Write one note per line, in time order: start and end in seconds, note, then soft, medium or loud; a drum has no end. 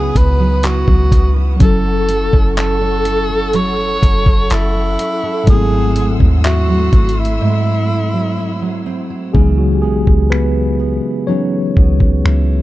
0.00 0.11 C#2 loud
0.00 1.54 C#3 medium
0.00 1.70 C#3 medium
0.00 0.39 F#3 medium
0.00 1.11 B3 medium
0.00 1.55 B3 medium
0.00 1.56 D#4 medium
0.00 0.15 E4 medium
0.00 1.58 E4 medium
0.00 1.59 F#4 medium
0.00 0.19 G#4 loud
0.00 1.56 B4 medium
0.00 1.56 F#5 medium
0.00 1.56 D#6 medium
0.15 0.85 C#2 loud
0.15 0.63 E4 medium
0.15 0.67 B4 loud
0.15 kick medium
0.15 closed hi-hat medium
0.39 0.87 F#3 medium
0.63 1.36 E4 medium
0.63 1.34 F#4 loud
0.63 clap loud
0.63 closed hi-hat medium
0.88 1.11 C#2 loud
0.88 1.60 F#3 medium
0.88 kick loud
1.12 1.58 C#2 loud
1.12 1.70 B3 medium
1.12 kick loud
1.12 closed hi-hat medium
1.36 1.84 E4 medium
1.56 5.41 F#3 medium
1.56 3.54 F#3 medium
1.56 5.43 C#4 medium
1.56 5.44 A4 medium
1.56 9.31 F#5 medium
1.56 kick loud
1.56 closed hi-hat medium
1.61 2.30 F#1 loud
1.61 5.44 E4 medium
1.61 2.54 A4 loud
1.61 5.44 C#6 medium
1.65 5.46 A4 medium
1.85 3.05 E4 medium
2.09 2.57 A4 medium
2.09 closed hi-hat medium
2.33 3.98 F#1 loud
2.33 2.80 C#4 medium
2.33 kick medium
2.57 3.29 A4 medium
2.57 3.57 A4 loud
2.57 clap loud
2.57 closed hi-hat medium
2.81 4.25 C#4 medium
3.05 3.78 E4 medium
3.05 closed hi-hat medium
3.30 4.02 A4 medium
3.53 5.75 F#3 medium
3.53 4.54 C#5 loud
3.53 closed hi-hat medium
3.78 4.99 E4 medium
4.02 4.26 F#1 loud
4.02 4.50 A4 medium
4.02 kick medium
4.02 closed hi-hat medium
4.26 4.50 F#1 loud
4.26 4.74 C#4 medium
4.26 kick medium
4.50 4.97 F#1 loud
4.50 5.49 E4 loud
4.50 5.23 A4 medium
4.50 5.92 A6 medium
4.50 clap loud
4.50 closed hi-hat medium
4.75 5.57 C#4 medium
4.99 5.95 E4 medium
4.99 closed hi-hat medium
5.23 7.44 A4 medium
5.44 9.29 G#2 medium
5.44 7.40 G#2 medium
5.44 9.30 F#3 medium
5.44 9.31 A3 medium
5.44 9.31 C6 medium
5.44 kick loud
5.44 closed hi-hat medium
5.48 6.17 G#1 loud
5.48 9.31 A3 medium
5.48 5.55 B3 soft
5.48 6.14 G#4 loud
5.48 9.31 E6 medium
5.52 9.33 E4 medium
5.57 9.35 C4 medium
5.72 6.91 C4 medium
5.96 6.44 E4 medium
5.96 closed hi-hat medium
6.20 6.90 D#2 loud
6.20 6.68 F#3 medium
6.20 kick medium
6.44 7.20 F#4 loud
6.44 8.89 E5 medium
6.44 clap loud
6.44 closed hi-hat medium
6.68 8.13 F#3 medium
6.93 7.39 G#1 loud
6.93 7.64 C4 medium
6.93 kick loud
6.93 closed hi-hat soft
7.09 closed hi-hat soft
7.17 7.89 E4 medium
7.17 8.87 E4 medium
7.25 closed hi-hat soft
7.41 9.44 G#2 medium
7.65 8.85 C4 medium
7.89 8.37 E4 medium
8.14 8.61 F#3 medium
8.38 9.10 E4 medium
8.62 10.34 F#3 medium
8.86 9.44 C4 medium
9.10 9.35 E4 medium
9.33 9.85 C#2 loud
9.33 12.62 C#3 medium
9.33 10.76 E3 medium
9.33 9.59 F#3 soft
9.33 9.58 G#3 medium
9.33 10.31 B3 soft
9.33 10.76 D#4 medium
9.33 10.31 E4 medium
9.33 9.59 G#4 medium
9.33 kick loud
9.58 9.75 F#3 medium
9.58 9.76 F#4 medium
9.75 9.83 G4 medium
9.82 10.06 B1 medium
9.82 10.06 G#3 medium
9.82 10.78 B3 medium
9.82 10.04 G#4 medium
10.07 11.00 C#2 loud
10.07 kick medium
10.30 11.25 B3 medium
10.30 12.24 E4 medium
10.30 11.24 B4 medium
10.30 finger snap loud
10.79 11.75 B3 medium
11.27 11.72 E3 soft
11.27 12.62 F#3 medium
11.27 11.73 F#3 soft
11.27 11.73 B3 soft
11.27 12.62 C#4 medium
11.27 11.73 D#4 medium
11.27 12.62 C#5 loud
11.76 12.23 C#2 loud
11.76 12.62 B3 medium
11.76 kick medium
12.00 kick medium
12.25 12.62 C#2 loud
12.25 12.62 E4 medium
12.25 finger snap loud